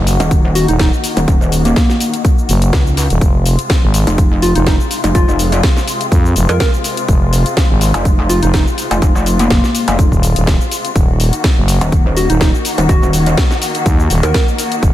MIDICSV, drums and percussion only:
0, 0, Header, 1, 2, 480
1, 0, Start_track
1, 0, Tempo, 483871
1, 1268, Time_signature, 4, 2, 24, 8
1, 14818, End_track
2, 0, Start_track
2, 0, Title_t, "Drums"
2, 68, Note_on_c, 9, 46, 113
2, 75, Note_on_c, 9, 82, 76
2, 168, Note_off_c, 9, 46, 0
2, 174, Note_off_c, 9, 82, 0
2, 199, Note_on_c, 9, 42, 64
2, 206, Note_on_c, 9, 82, 33
2, 298, Note_off_c, 9, 42, 0
2, 305, Note_off_c, 9, 82, 0
2, 308, Note_on_c, 9, 36, 123
2, 309, Note_on_c, 9, 42, 53
2, 315, Note_on_c, 9, 82, 44
2, 407, Note_off_c, 9, 36, 0
2, 408, Note_off_c, 9, 42, 0
2, 415, Note_off_c, 9, 82, 0
2, 548, Note_on_c, 9, 46, 113
2, 555, Note_on_c, 9, 82, 75
2, 648, Note_off_c, 9, 46, 0
2, 654, Note_off_c, 9, 82, 0
2, 679, Note_on_c, 9, 42, 65
2, 685, Note_on_c, 9, 82, 33
2, 778, Note_off_c, 9, 42, 0
2, 785, Note_off_c, 9, 82, 0
2, 788, Note_on_c, 9, 36, 121
2, 788, Note_on_c, 9, 42, 51
2, 789, Note_on_c, 9, 38, 121
2, 794, Note_on_c, 9, 82, 43
2, 887, Note_off_c, 9, 36, 0
2, 887, Note_off_c, 9, 42, 0
2, 888, Note_off_c, 9, 38, 0
2, 894, Note_off_c, 9, 82, 0
2, 925, Note_on_c, 9, 82, 30
2, 1024, Note_off_c, 9, 82, 0
2, 1028, Note_on_c, 9, 46, 110
2, 1035, Note_on_c, 9, 82, 75
2, 1127, Note_off_c, 9, 46, 0
2, 1134, Note_off_c, 9, 82, 0
2, 1159, Note_on_c, 9, 42, 63
2, 1166, Note_on_c, 9, 82, 31
2, 1258, Note_off_c, 9, 42, 0
2, 1265, Note_off_c, 9, 82, 0
2, 1268, Note_on_c, 9, 36, 125
2, 1268, Note_on_c, 9, 42, 51
2, 1275, Note_on_c, 9, 82, 44
2, 1367, Note_off_c, 9, 36, 0
2, 1368, Note_off_c, 9, 42, 0
2, 1374, Note_off_c, 9, 82, 0
2, 1406, Note_on_c, 9, 82, 31
2, 1505, Note_off_c, 9, 82, 0
2, 1508, Note_on_c, 9, 46, 110
2, 1515, Note_on_c, 9, 82, 78
2, 1608, Note_off_c, 9, 46, 0
2, 1614, Note_off_c, 9, 82, 0
2, 1638, Note_on_c, 9, 42, 61
2, 1645, Note_on_c, 9, 82, 32
2, 1738, Note_off_c, 9, 42, 0
2, 1744, Note_off_c, 9, 82, 0
2, 1748, Note_on_c, 9, 36, 127
2, 1748, Note_on_c, 9, 42, 50
2, 1749, Note_on_c, 9, 38, 117
2, 1755, Note_on_c, 9, 82, 43
2, 1847, Note_off_c, 9, 36, 0
2, 1848, Note_off_c, 9, 38, 0
2, 1848, Note_off_c, 9, 42, 0
2, 1854, Note_off_c, 9, 82, 0
2, 1880, Note_on_c, 9, 38, 36
2, 1885, Note_on_c, 9, 82, 29
2, 1979, Note_off_c, 9, 38, 0
2, 1985, Note_off_c, 9, 82, 0
2, 1988, Note_on_c, 9, 46, 113
2, 1995, Note_on_c, 9, 82, 77
2, 2088, Note_off_c, 9, 46, 0
2, 2094, Note_off_c, 9, 82, 0
2, 2119, Note_on_c, 9, 42, 63
2, 2125, Note_on_c, 9, 82, 33
2, 2218, Note_off_c, 9, 42, 0
2, 2224, Note_off_c, 9, 82, 0
2, 2228, Note_on_c, 9, 36, 127
2, 2228, Note_on_c, 9, 42, 52
2, 2234, Note_on_c, 9, 82, 45
2, 2327, Note_off_c, 9, 36, 0
2, 2327, Note_off_c, 9, 42, 0
2, 2334, Note_off_c, 9, 82, 0
2, 2366, Note_on_c, 9, 82, 31
2, 2465, Note_off_c, 9, 82, 0
2, 2468, Note_on_c, 9, 46, 113
2, 2475, Note_on_c, 9, 82, 77
2, 2568, Note_off_c, 9, 46, 0
2, 2574, Note_off_c, 9, 82, 0
2, 2598, Note_on_c, 9, 42, 67
2, 2605, Note_on_c, 9, 82, 34
2, 2698, Note_off_c, 9, 42, 0
2, 2704, Note_off_c, 9, 82, 0
2, 2708, Note_on_c, 9, 36, 124
2, 2708, Note_on_c, 9, 42, 50
2, 2709, Note_on_c, 9, 38, 117
2, 2714, Note_on_c, 9, 82, 42
2, 2807, Note_off_c, 9, 36, 0
2, 2807, Note_off_c, 9, 42, 0
2, 2808, Note_off_c, 9, 38, 0
2, 2814, Note_off_c, 9, 82, 0
2, 2845, Note_on_c, 9, 82, 31
2, 2944, Note_off_c, 9, 82, 0
2, 2949, Note_on_c, 9, 46, 111
2, 2955, Note_on_c, 9, 82, 78
2, 3048, Note_off_c, 9, 46, 0
2, 3054, Note_off_c, 9, 82, 0
2, 3079, Note_on_c, 9, 42, 60
2, 3085, Note_on_c, 9, 82, 32
2, 3178, Note_off_c, 9, 42, 0
2, 3185, Note_off_c, 9, 82, 0
2, 3188, Note_on_c, 9, 36, 122
2, 3188, Note_on_c, 9, 42, 51
2, 3195, Note_on_c, 9, 82, 47
2, 3287, Note_off_c, 9, 36, 0
2, 3287, Note_off_c, 9, 42, 0
2, 3294, Note_off_c, 9, 82, 0
2, 3428, Note_on_c, 9, 46, 107
2, 3435, Note_on_c, 9, 82, 81
2, 3527, Note_off_c, 9, 46, 0
2, 3534, Note_off_c, 9, 82, 0
2, 3559, Note_on_c, 9, 42, 64
2, 3565, Note_on_c, 9, 82, 34
2, 3658, Note_off_c, 9, 42, 0
2, 3665, Note_off_c, 9, 82, 0
2, 3668, Note_on_c, 9, 36, 119
2, 3668, Note_on_c, 9, 42, 53
2, 3669, Note_on_c, 9, 38, 114
2, 3674, Note_on_c, 9, 82, 46
2, 3767, Note_off_c, 9, 36, 0
2, 3767, Note_off_c, 9, 42, 0
2, 3768, Note_off_c, 9, 38, 0
2, 3774, Note_off_c, 9, 82, 0
2, 3907, Note_on_c, 9, 46, 110
2, 3914, Note_on_c, 9, 82, 82
2, 4007, Note_off_c, 9, 46, 0
2, 4013, Note_off_c, 9, 82, 0
2, 4038, Note_on_c, 9, 42, 65
2, 4045, Note_on_c, 9, 82, 34
2, 4138, Note_off_c, 9, 42, 0
2, 4144, Note_off_c, 9, 82, 0
2, 4148, Note_on_c, 9, 36, 120
2, 4148, Note_on_c, 9, 42, 52
2, 4154, Note_on_c, 9, 82, 46
2, 4247, Note_off_c, 9, 36, 0
2, 4247, Note_off_c, 9, 42, 0
2, 4254, Note_off_c, 9, 82, 0
2, 4388, Note_on_c, 9, 46, 108
2, 4394, Note_on_c, 9, 82, 79
2, 4487, Note_off_c, 9, 46, 0
2, 4494, Note_off_c, 9, 82, 0
2, 4519, Note_on_c, 9, 42, 64
2, 4525, Note_on_c, 9, 82, 35
2, 4618, Note_off_c, 9, 42, 0
2, 4624, Note_off_c, 9, 82, 0
2, 4628, Note_on_c, 9, 36, 115
2, 4628, Note_on_c, 9, 42, 51
2, 4629, Note_on_c, 9, 38, 116
2, 4635, Note_on_c, 9, 82, 46
2, 4727, Note_off_c, 9, 36, 0
2, 4727, Note_off_c, 9, 42, 0
2, 4728, Note_off_c, 9, 38, 0
2, 4734, Note_off_c, 9, 82, 0
2, 4765, Note_on_c, 9, 82, 32
2, 4864, Note_off_c, 9, 82, 0
2, 4868, Note_on_c, 9, 46, 106
2, 4875, Note_on_c, 9, 82, 78
2, 4967, Note_off_c, 9, 46, 0
2, 4974, Note_off_c, 9, 82, 0
2, 4999, Note_on_c, 9, 42, 62
2, 5005, Note_on_c, 9, 82, 33
2, 5098, Note_off_c, 9, 42, 0
2, 5104, Note_off_c, 9, 82, 0
2, 5108, Note_on_c, 9, 36, 117
2, 5108, Note_on_c, 9, 42, 53
2, 5115, Note_on_c, 9, 82, 47
2, 5207, Note_off_c, 9, 36, 0
2, 5207, Note_off_c, 9, 42, 0
2, 5214, Note_off_c, 9, 82, 0
2, 5246, Note_on_c, 9, 82, 33
2, 5345, Note_off_c, 9, 82, 0
2, 5348, Note_on_c, 9, 46, 107
2, 5355, Note_on_c, 9, 82, 84
2, 5447, Note_off_c, 9, 46, 0
2, 5454, Note_off_c, 9, 82, 0
2, 5479, Note_on_c, 9, 42, 66
2, 5486, Note_on_c, 9, 82, 36
2, 5578, Note_off_c, 9, 42, 0
2, 5585, Note_off_c, 9, 82, 0
2, 5588, Note_on_c, 9, 36, 118
2, 5589, Note_on_c, 9, 38, 117
2, 5589, Note_on_c, 9, 42, 53
2, 5595, Note_on_c, 9, 82, 46
2, 5687, Note_off_c, 9, 36, 0
2, 5688, Note_off_c, 9, 42, 0
2, 5689, Note_off_c, 9, 38, 0
2, 5694, Note_off_c, 9, 82, 0
2, 5720, Note_on_c, 9, 38, 36
2, 5726, Note_on_c, 9, 82, 34
2, 5819, Note_off_c, 9, 38, 0
2, 5825, Note_off_c, 9, 82, 0
2, 5828, Note_on_c, 9, 46, 104
2, 5835, Note_on_c, 9, 82, 84
2, 5927, Note_off_c, 9, 46, 0
2, 5934, Note_off_c, 9, 82, 0
2, 5959, Note_on_c, 9, 42, 65
2, 5966, Note_on_c, 9, 82, 34
2, 6058, Note_off_c, 9, 42, 0
2, 6065, Note_off_c, 9, 82, 0
2, 6068, Note_on_c, 9, 36, 119
2, 6069, Note_on_c, 9, 42, 53
2, 6075, Note_on_c, 9, 82, 46
2, 6167, Note_off_c, 9, 36, 0
2, 6168, Note_off_c, 9, 42, 0
2, 6175, Note_off_c, 9, 82, 0
2, 6206, Note_on_c, 9, 82, 32
2, 6305, Note_off_c, 9, 82, 0
2, 6308, Note_on_c, 9, 46, 103
2, 6314, Note_on_c, 9, 82, 84
2, 6407, Note_off_c, 9, 46, 0
2, 6414, Note_off_c, 9, 82, 0
2, 6439, Note_on_c, 9, 42, 68
2, 6445, Note_on_c, 9, 82, 36
2, 6538, Note_off_c, 9, 42, 0
2, 6545, Note_off_c, 9, 82, 0
2, 6548, Note_on_c, 9, 36, 111
2, 6548, Note_on_c, 9, 42, 53
2, 6549, Note_on_c, 9, 38, 113
2, 6555, Note_on_c, 9, 82, 47
2, 6647, Note_off_c, 9, 36, 0
2, 6647, Note_off_c, 9, 42, 0
2, 6648, Note_off_c, 9, 38, 0
2, 6654, Note_off_c, 9, 82, 0
2, 6685, Note_on_c, 9, 82, 33
2, 6785, Note_off_c, 9, 82, 0
2, 6788, Note_on_c, 9, 46, 105
2, 6794, Note_on_c, 9, 82, 83
2, 6887, Note_off_c, 9, 46, 0
2, 6894, Note_off_c, 9, 82, 0
2, 6918, Note_on_c, 9, 42, 67
2, 6925, Note_on_c, 9, 82, 34
2, 7018, Note_off_c, 9, 42, 0
2, 7024, Note_off_c, 9, 82, 0
2, 7028, Note_on_c, 9, 36, 118
2, 7028, Note_on_c, 9, 42, 56
2, 7034, Note_on_c, 9, 82, 48
2, 7127, Note_off_c, 9, 36, 0
2, 7127, Note_off_c, 9, 42, 0
2, 7134, Note_off_c, 9, 82, 0
2, 7268, Note_on_c, 9, 46, 101
2, 7275, Note_on_c, 9, 82, 85
2, 7367, Note_off_c, 9, 46, 0
2, 7374, Note_off_c, 9, 82, 0
2, 7399, Note_on_c, 9, 42, 69
2, 7405, Note_on_c, 9, 82, 36
2, 7498, Note_off_c, 9, 42, 0
2, 7505, Note_off_c, 9, 82, 0
2, 7508, Note_on_c, 9, 36, 121
2, 7508, Note_on_c, 9, 42, 53
2, 7509, Note_on_c, 9, 38, 120
2, 7515, Note_on_c, 9, 82, 47
2, 7607, Note_off_c, 9, 36, 0
2, 7607, Note_off_c, 9, 42, 0
2, 7608, Note_off_c, 9, 38, 0
2, 7614, Note_off_c, 9, 82, 0
2, 7748, Note_on_c, 9, 46, 101
2, 7754, Note_on_c, 9, 82, 87
2, 7847, Note_off_c, 9, 46, 0
2, 7854, Note_off_c, 9, 82, 0
2, 7878, Note_on_c, 9, 42, 68
2, 7885, Note_on_c, 9, 82, 36
2, 7978, Note_off_c, 9, 42, 0
2, 7984, Note_off_c, 9, 82, 0
2, 7988, Note_on_c, 9, 36, 117
2, 7988, Note_on_c, 9, 42, 56
2, 7995, Note_on_c, 9, 82, 48
2, 8087, Note_off_c, 9, 36, 0
2, 8087, Note_off_c, 9, 42, 0
2, 8094, Note_off_c, 9, 82, 0
2, 8228, Note_on_c, 9, 46, 100
2, 8234, Note_on_c, 9, 82, 85
2, 8327, Note_off_c, 9, 46, 0
2, 8334, Note_off_c, 9, 82, 0
2, 8358, Note_on_c, 9, 42, 72
2, 8365, Note_on_c, 9, 82, 37
2, 8458, Note_off_c, 9, 42, 0
2, 8464, Note_off_c, 9, 82, 0
2, 8468, Note_on_c, 9, 36, 114
2, 8468, Note_on_c, 9, 42, 54
2, 8469, Note_on_c, 9, 38, 120
2, 8475, Note_on_c, 9, 82, 47
2, 8567, Note_off_c, 9, 36, 0
2, 8567, Note_off_c, 9, 42, 0
2, 8568, Note_off_c, 9, 38, 0
2, 8574, Note_off_c, 9, 82, 0
2, 8605, Note_on_c, 9, 82, 33
2, 8705, Note_off_c, 9, 82, 0
2, 8708, Note_on_c, 9, 46, 100
2, 8715, Note_on_c, 9, 82, 83
2, 8807, Note_off_c, 9, 46, 0
2, 8814, Note_off_c, 9, 82, 0
2, 8839, Note_on_c, 9, 42, 69
2, 8845, Note_on_c, 9, 82, 34
2, 8938, Note_off_c, 9, 42, 0
2, 8945, Note_off_c, 9, 82, 0
2, 8948, Note_on_c, 9, 36, 118
2, 8948, Note_on_c, 9, 42, 58
2, 8955, Note_on_c, 9, 82, 47
2, 9047, Note_off_c, 9, 36, 0
2, 9047, Note_off_c, 9, 42, 0
2, 9054, Note_off_c, 9, 82, 0
2, 9085, Note_on_c, 9, 82, 33
2, 9184, Note_off_c, 9, 82, 0
2, 9188, Note_on_c, 9, 46, 104
2, 9194, Note_on_c, 9, 82, 83
2, 9287, Note_off_c, 9, 46, 0
2, 9294, Note_off_c, 9, 82, 0
2, 9319, Note_on_c, 9, 42, 69
2, 9325, Note_on_c, 9, 82, 35
2, 9418, Note_off_c, 9, 42, 0
2, 9425, Note_off_c, 9, 82, 0
2, 9428, Note_on_c, 9, 36, 118
2, 9428, Note_on_c, 9, 42, 57
2, 9429, Note_on_c, 9, 38, 122
2, 9435, Note_on_c, 9, 82, 47
2, 9527, Note_off_c, 9, 42, 0
2, 9528, Note_off_c, 9, 36, 0
2, 9528, Note_off_c, 9, 38, 0
2, 9534, Note_off_c, 9, 82, 0
2, 9560, Note_on_c, 9, 38, 37
2, 9566, Note_on_c, 9, 82, 32
2, 9659, Note_off_c, 9, 38, 0
2, 9665, Note_off_c, 9, 82, 0
2, 9668, Note_on_c, 9, 46, 104
2, 9675, Note_on_c, 9, 82, 83
2, 9768, Note_off_c, 9, 46, 0
2, 9774, Note_off_c, 9, 82, 0
2, 9799, Note_on_c, 9, 42, 70
2, 9805, Note_on_c, 9, 82, 35
2, 9898, Note_off_c, 9, 42, 0
2, 9905, Note_off_c, 9, 82, 0
2, 9908, Note_on_c, 9, 36, 116
2, 9908, Note_on_c, 9, 42, 55
2, 9915, Note_on_c, 9, 82, 47
2, 10007, Note_off_c, 9, 42, 0
2, 10008, Note_off_c, 9, 36, 0
2, 10014, Note_off_c, 9, 82, 0
2, 10039, Note_on_c, 9, 36, 60
2, 10045, Note_on_c, 9, 82, 32
2, 10138, Note_off_c, 9, 36, 0
2, 10144, Note_off_c, 9, 82, 0
2, 10148, Note_on_c, 9, 46, 103
2, 10155, Note_on_c, 9, 82, 82
2, 10247, Note_off_c, 9, 46, 0
2, 10254, Note_off_c, 9, 82, 0
2, 10279, Note_on_c, 9, 42, 72
2, 10285, Note_on_c, 9, 82, 36
2, 10378, Note_off_c, 9, 42, 0
2, 10385, Note_off_c, 9, 82, 0
2, 10388, Note_on_c, 9, 36, 116
2, 10389, Note_on_c, 9, 42, 56
2, 10390, Note_on_c, 9, 38, 123
2, 10395, Note_on_c, 9, 82, 46
2, 10487, Note_off_c, 9, 36, 0
2, 10488, Note_off_c, 9, 42, 0
2, 10489, Note_off_c, 9, 38, 0
2, 10495, Note_off_c, 9, 82, 0
2, 10526, Note_on_c, 9, 82, 34
2, 10625, Note_off_c, 9, 82, 0
2, 10629, Note_on_c, 9, 46, 106
2, 10636, Note_on_c, 9, 82, 83
2, 10728, Note_off_c, 9, 46, 0
2, 10735, Note_off_c, 9, 82, 0
2, 10759, Note_on_c, 9, 42, 67
2, 10766, Note_on_c, 9, 82, 35
2, 10858, Note_off_c, 9, 42, 0
2, 10865, Note_off_c, 9, 82, 0
2, 10868, Note_on_c, 9, 36, 119
2, 10869, Note_on_c, 9, 42, 56
2, 10875, Note_on_c, 9, 82, 46
2, 10967, Note_off_c, 9, 36, 0
2, 10968, Note_off_c, 9, 42, 0
2, 10974, Note_off_c, 9, 82, 0
2, 11108, Note_on_c, 9, 46, 105
2, 11115, Note_on_c, 9, 82, 81
2, 11207, Note_off_c, 9, 46, 0
2, 11214, Note_off_c, 9, 82, 0
2, 11238, Note_on_c, 9, 42, 69
2, 11245, Note_on_c, 9, 82, 34
2, 11337, Note_off_c, 9, 42, 0
2, 11344, Note_off_c, 9, 82, 0
2, 11348, Note_on_c, 9, 36, 125
2, 11348, Note_on_c, 9, 42, 55
2, 11349, Note_on_c, 9, 38, 127
2, 11355, Note_on_c, 9, 82, 44
2, 11447, Note_off_c, 9, 36, 0
2, 11447, Note_off_c, 9, 42, 0
2, 11448, Note_off_c, 9, 38, 0
2, 11454, Note_off_c, 9, 82, 0
2, 11588, Note_on_c, 9, 46, 111
2, 11595, Note_on_c, 9, 82, 82
2, 11687, Note_off_c, 9, 46, 0
2, 11694, Note_off_c, 9, 82, 0
2, 11719, Note_on_c, 9, 42, 69
2, 11726, Note_on_c, 9, 82, 33
2, 11818, Note_off_c, 9, 42, 0
2, 11825, Note_off_c, 9, 82, 0
2, 11828, Note_on_c, 9, 36, 123
2, 11828, Note_on_c, 9, 42, 57
2, 11835, Note_on_c, 9, 82, 46
2, 11927, Note_off_c, 9, 36, 0
2, 11927, Note_off_c, 9, 42, 0
2, 11934, Note_off_c, 9, 82, 0
2, 12068, Note_on_c, 9, 46, 106
2, 12075, Note_on_c, 9, 82, 79
2, 12167, Note_off_c, 9, 46, 0
2, 12174, Note_off_c, 9, 82, 0
2, 12199, Note_on_c, 9, 42, 70
2, 12206, Note_on_c, 9, 82, 34
2, 12298, Note_off_c, 9, 42, 0
2, 12305, Note_off_c, 9, 82, 0
2, 12308, Note_on_c, 9, 36, 116
2, 12308, Note_on_c, 9, 42, 56
2, 12309, Note_on_c, 9, 38, 127
2, 12315, Note_on_c, 9, 82, 45
2, 12407, Note_off_c, 9, 36, 0
2, 12407, Note_off_c, 9, 42, 0
2, 12408, Note_off_c, 9, 38, 0
2, 12414, Note_off_c, 9, 82, 0
2, 12446, Note_on_c, 9, 82, 32
2, 12545, Note_off_c, 9, 82, 0
2, 12548, Note_on_c, 9, 46, 110
2, 12554, Note_on_c, 9, 82, 82
2, 12647, Note_off_c, 9, 46, 0
2, 12654, Note_off_c, 9, 82, 0
2, 12678, Note_on_c, 9, 42, 66
2, 12685, Note_on_c, 9, 82, 34
2, 12778, Note_off_c, 9, 42, 0
2, 12784, Note_off_c, 9, 82, 0
2, 12788, Note_on_c, 9, 36, 127
2, 12788, Note_on_c, 9, 42, 55
2, 12794, Note_on_c, 9, 82, 45
2, 12887, Note_off_c, 9, 36, 0
2, 12887, Note_off_c, 9, 42, 0
2, 12894, Note_off_c, 9, 82, 0
2, 12925, Note_on_c, 9, 82, 31
2, 13024, Note_off_c, 9, 82, 0
2, 13027, Note_on_c, 9, 46, 110
2, 13034, Note_on_c, 9, 82, 76
2, 13126, Note_off_c, 9, 46, 0
2, 13133, Note_off_c, 9, 82, 0
2, 13158, Note_on_c, 9, 42, 68
2, 13164, Note_on_c, 9, 82, 33
2, 13257, Note_off_c, 9, 42, 0
2, 13264, Note_off_c, 9, 82, 0
2, 13268, Note_on_c, 9, 36, 127
2, 13268, Note_on_c, 9, 38, 127
2, 13268, Note_on_c, 9, 42, 56
2, 13274, Note_on_c, 9, 82, 43
2, 13367, Note_off_c, 9, 36, 0
2, 13367, Note_off_c, 9, 42, 0
2, 13368, Note_off_c, 9, 38, 0
2, 13373, Note_off_c, 9, 82, 0
2, 13399, Note_on_c, 9, 38, 39
2, 13405, Note_on_c, 9, 82, 30
2, 13498, Note_off_c, 9, 38, 0
2, 13504, Note_off_c, 9, 82, 0
2, 13508, Note_on_c, 9, 46, 113
2, 13514, Note_on_c, 9, 82, 78
2, 13607, Note_off_c, 9, 46, 0
2, 13613, Note_off_c, 9, 82, 0
2, 13638, Note_on_c, 9, 42, 68
2, 13645, Note_on_c, 9, 82, 32
2, 13738, Note_off_c, 9, 42, 0
2, 13744, Note_off_c, 9, 82, 0
2, 13748, Note_on_c, 9, 36, 127
2, 13748, Note_on_c, 9, 42, 55
2, 13754, Note_on_c, 9, 82, 45
2, 13847, Note_off_c, 9, 36, 0
2, 13847, Note_off_c, 9, 42, 0
2, 13853, Note_off_c, 9, 82, 0
2, 13885, Note_on_c, 9, 82, 31
2, 13984, Note_off_c, 9, 82, 0
2, 13988, Note_on_c, 9, 46, 112
2, 13994, Note_on_c, 9, 82, 75
2, 14087, Note_off_c, 9, 46, 0
2, 14094, Note_off_c, 9, 82, 0
2, 14119, Note_on_c, 9, 42, 70
2, 14125, Note_on_c, 9, 82, 34
2, 14218, Note_off_c, 9, 42, 0
2, 14225, Note_off_c, 9, 82, 0
2, 14228, Note_on_c, 9, 36, 123
2, 14228, Note_on_c, 9, 42, 54
2, 14229, Note_on_c, 9, 38, 126
2, 14235, Note_on_c, 9, 82, 43
2, 14327, Note_off_c, 9, 36, 0
2, 14328, Note_off_c, 9, 38, 0
2, 14328, Note_off_c, 9, 42, 0
2, 14334, Note_off_c, 9, 82, 0
2, 14365, Note_on_c, 9, 82, 31
2, 14465, Note_off_c, 9, 82, 0
2, 14468, Note_on_c, 9, 46, 114
2, 14475, Note_on_c, 9, 82, 79
2, 14567, Note_off_c, 9, 46, 0
2, 14574, Note_off_c, 9, 82, 0
2, 14599, Note_on_c, 9, 42, 66
2, 14606, Note_on_c, 9, 82, 32
2, 14698, Note_off_c, 9, 42, 0
2, 14705, Note_off_c, 9, 82, 0
2, 14708, Note_on_c, 9, 36, 127
2, 14708, Note_on_c, 9, 42, 52
2, 14715, Note_on_c, 9, 82, 43
2, 14807, Note_off_c, 9, 36, 0
2, 14807, Note_off_c, 9, 42, 0
2, 14814, Note_off_c, 9, 82, 0
2, 14818, End_track
0, 0, End_of_file